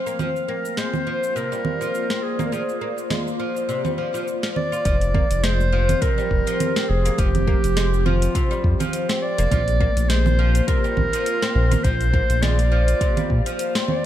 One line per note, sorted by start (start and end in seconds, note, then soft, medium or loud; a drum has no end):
0.00 0.19 F3 medium
0.00 2.07 C4 medium
0.00 4.87 F5 medium
0.00 1.06 G5 medium
0.06 0.18 A#3 medium
0.06 shaker medium
0.19 0.29 F3 medium
0.19 5.71 A#3 medium
0.19 low conga medium
0.19 shaker soft
0.36 shaker soft
0.48 0.58 A#3 medium
0.48 0.79 A#4 medium
0.65 5.65 F4 medium
0.65 shaker medium
0.77 0.93 G#3 medium
0.77 1.37 C5 loud
0.77 snare medium
0.77 shaker soft
0.83 6.73 C5 medium
0.94 low conga medium
0.94 shaker soft
1.07 1.35 F3 medium
1.23 shaker medium
1.36 1.50 C3 medium
1.36 2.25 A#4 loud
1.36 shaker soft
1.42 6.23 D5 medium
1.52 1.80 G3 medium
1.52 shaker soft
1.65 low conga medium
1.81 2.09 F3 medium
1.81 shaker medium
1.95 shaker soft
2.10 2.38 C4 medium
2.10 snare medium
2.10 shaker soft
2.23 2.45 G#4 medium
2.39 2.51 A#3 medium
2.39 low conga medium
2.39 shaker medium
2.46 2.54 A#4 medium
2.52 2.62 F3 medium
2.52 3.11 G#4 medium
2.52 shaker soft
2.69 shaker soft
2.81 2.91 A#3 medium
2.98 shaker medium
3.10 3.26 G#3 medium
3.10 snare medium
3.10 low conga medium
3.10 shaker soft
3.27 shaker soft
3.40 3.68 F3 medium
3.57 shaker medium
3.69 3.83 C3 medium
3.69 shaker soft
3.85 3.97 G3 medium
3.85 low conga medium
3.85 shaker soft
3.98 4.13 F3 medium
4.14 4.26 F3 medium
4.14 shaker medium
4.28 shaker soft
4.43 4.55 F3 medium
4.43 snare medium
4.43 shaker soft
4.56 5.45 D5 loud
4.56 low conga medium
4.72 4.85 F4 medium
4.72 shaker medium
4.85 5.22 F1 medium
4.85 4.95 F3 medium
4.85 9.52 F3 loud
4.85 kick loud
4.85 closed hi-hat medium
4.85 shaker medium
5.01 closed hi-hat soft
5.01 shaker soft
5.14 5.24 A#3 medium
5.14 kick loud
5.14 low conga medium
5.31 5.95 F1 medium
5.31 closed hi-hat medium
5.31 shaker medium
5.44 5.59 G#3 medium
5.44 6.03 C5 loud
5.44 snare medium
5.44 closed hi-hat medium
5.44 shaker medium
5.56 11.39 C4 medium
5.60 10.43 G4 medium
5.60 shaker soft
5.73 6.01 F3 medium
5.89 closed hi-hat soft
5.89 low conga medium
5.89 shaker medium
6.02 6.16 C3 medium
6.02 6.91 A#4 loud
6.02 kick loud
6.02 closed hi-hat medium
6.02 shaker medium
6.18 6.46 G3 medium
6.18 shaker soft
6.31 6.42 F1 medium
6.31 kick medium
6.47 6.75 F3 medium
6.47 closed hi-hat soft
6.47 shaker medium
6.60 closed hi-hat medium
6.60 low conga medium
6.60 shaker medium
6.76 7.04 C4 medium
6.76 snare medium
6.76 shaker soft
6.89 7.10 F1 medium
6.89 7.20 G#4 medium
7.05 7.17 A#3 medium
7.05 closed hi-hat soft
7.05 shaker medium
7.18 7.56 F1 loud
7.18 7.28 F3 medium
7.18 8.08 G4 loud
7.18 kick loud
7.18 closed hi-hat medium
7.18 shaker medium
7.35 closed hi-hat soft
7.35 low conga medium
7.35 shaker soft
7.47 7.57 A#3 medium
7.47 kick loud
7.64 8.28 F1 medium
7.64 closed hi-hat soft
7.64 shaker medium
7.77 7.92 G#3 medium
7.77 snare medium
7.77 closed hi-hat medium
7.77 shaker medium
7.94 shaker soft
8.06 8.34 F3 medium
8.06 8.96 F4 medium
8.06 low conga medium
8.22 closed hi-hat soft
8.22 shaker medium
8.35 8.50 C3 medium
8.35 kick loud
8.35 closed hi-hat medium
8.35 shaker medium
8.51 8.79 G3 medium
8.51 shaker soft
8.64 8.75 F2 medium
8.64 kick medium
8.80 9.08 F3 medium
8.80 closed hi-hat soft
8.80 low conga medium
8.80 shaker medium
8.93 closed hi-hat medium
8.93 shaker medium
9.09 9.37 C4 medium
9.09 snare medium
9.09 shaker soft
9.22 10.10 D5 loud
9.38 9.47 F1 medium
9.38 9.50 A#3 medium
9.38 closed hi-hat soft
9.38 shaker medium
9.51 9.88 A#1 loud
9.51 9.61 F3 medium
9.51 14.06 A#3 medium
9.51 kick loud
9.51 closed hi-hat medium
9.51 low conga medium
9.51 shaker medium
9.68 closed hi-hat soft
9.68 shaker soft
9.81 9.90 A#3 medium
9.81 kick loud
9.86 14.06 C5 medium
9.97 10.61 A#1 medium
9.97 closed hi-hat soft
9.97 shaker medium
10.09 10.25 G#3 medium
10.09 14.06 F4 medium
10.09 10.67 C5 loud
10.09 snare medium
10.09 closed hi-hat medium
10.09 shaker medium
10.26 low conga medium
10.26 shaker soft
10.39 10.67 F3 medium
10.55 closed hi-hat soft
10.55 shaker medium
10.67 10.83 C3 medium
10.67 11.85 A#4 loud
10.67 kick loud
10.67 closed hi-hat soft
10.67 shaker medium
10.84 11.12 G3 medium
10.84 shaker soft
10.97 11.08 A#1 medium
10.97 kick medium
10.97 low conga medium
11.13 11.41 F3 medium
11.13 closed hi-hat soft
11.13 shaker medium
11.26 closed hi-hat medium
11.26 shaker medium
11.38 14.06 F5 medium
11.42 11.70 C4 medium
11.42 snare medium
11.42 shaker soft
11.55 11.76 A#1 medium
11.71 11.83 A#3 medium
11.71 closed hi-hat soft
11.71 low conga medium
11.71 shaker medium
11.83 12.21 A#1 loud
11.83 11.94 F3 medium
11.83 12.43 C5 loud
11.83 kick loud
11.83 closed hi-hat soft
11.83 shaker medium
12.01 closed hi-hat soft
12.01 shaker soft
12.14 12.23 A#3 medium
12.14 kick loud
12.30 12.94 A#1 medium
12.30 closed hi-hat soft
12.30 shaker medium
12.42 12.58 G#3 medium
12.42 13.59 D5 loud
12.42 snare medium
12.42 closed hi-hat medium
12.42 low conga medium
12.42 shaker medium
12.59 closed hi-hat soft
12.59 shaker soft
12.72 13.00 F3 medium
12.88 closed hi-hat soft
12.88 shaker medium
13.01 13.16 C3 medium
13.01 kick loud
13.01 closed hi-hat soft
13.01 shaker medium
13.17 13.45 G3 medium
13.17 closed hi-hat soft
13.17 low conga medium
13.17 shaker soft
13.30 13.41 A#2 medium
13.30 kick medium
13.46 13.74 F3 medium
13.46 closed hi-hat soft
13.46 shaker medium
13.59 closed hi-hat medium
13.59 shaker medium
13.75 14.03 C4 medium
13.75 snare medium
13.75 shaker soft
13.88 14.06 D5 loud
13.88 low conga medium